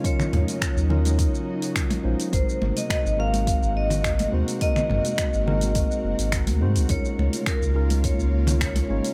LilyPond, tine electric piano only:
\new Staff \with { instrumentName = "Tine electric piano" } { \time 4/4 \key aes \mixolydian \tempo 4 = 105 <ges des' ees' f' bes'>4. <ges des' ees' f' bes'>16 r4. r16 <ges des' ees' f' c''>8 | <aes c' ees' ges' bes'>4. <aes c' ees' ges' bes'>16 r4. r16 <aes c' ees' ges' c''>8 | <aes c' ees' ges' bes'>4. <aes c' ees' ges' bes'>16 r4. r16 <aes c' ees' ges' c''>8 | <aes des' ees' f' bes'>4. <aes des' ees' f' bes'>16 r4. r16 <aes des' ees' f' des''>8 | }